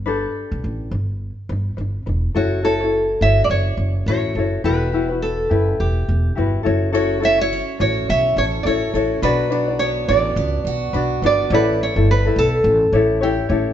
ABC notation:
X:1
M:4/4
L:1/16
Q:"Swing 16ths" 1/4=105
K:Amix
V:1 name="Nylon-string guitar"
z16 | F2 A4 e3/2 d/2 c4 c4 | B4 A4 G6 z2 | z2 e c3 c2 e2 c3/2 d/2 c4 |
B4 c2 d4 z4 d2 | B2 c2 B2 A6 G4 |]
V:2 name="Ukulele"
[DGAB]6 [DB]2 z2 [DB]2 [DB]2 [DB]2 | [EFAc]2 [EFAc] [EFc]3 [EFAc]6 [EFAc]2 [EFAc]2 | [EFGB]2 [EFGB] [EFB]3 [EGB]6 [EFGB]2 [EFAc]2 | [EFAc]2 [EFAc] [EFc]3 [EFAc]6 [EFAc]2 [EFAc]2 |
[DFBd]2 [DFBd] [DFd]3 [DFBd]6 [DFBd]2 [DFBd]2 | [EGAc]3 [EGA]2 [EGA]4- [EGA] [EGAc]2 [EGAc]2 [EGAc]2 |]
V:3 name="Steel-string acoustic guitar"
z16 | z16 | z16 | C2 E2 C2 E2 C2 A2 E2 C2 |
F,2 D2 B,2 D2 B,2 F2 D2 B,2 | z16 |]
V:4 name="Upright bass" clef=bass
G,,,2 z B,,, A,,,2 G,,,3 z G,,,2 G,,,2 E,,,2 | F,,,6 G,,,2 F,,,2 F,,,2 A,,,2 F,,,2 | E,,,6 F,,,2 E,,,2 E,,,2 G,,,2 F,,,2- | F,,,6 A,,,2 B,,,2 A,,,2 A,,,2 A,,,2 |
B,,,6 A,,,2 C,,2 B,,,2 B,,,2 G,,,2 | A,,,3 G,,,3 B,,,2 A,,,2 A,,,4 A,,,2 |]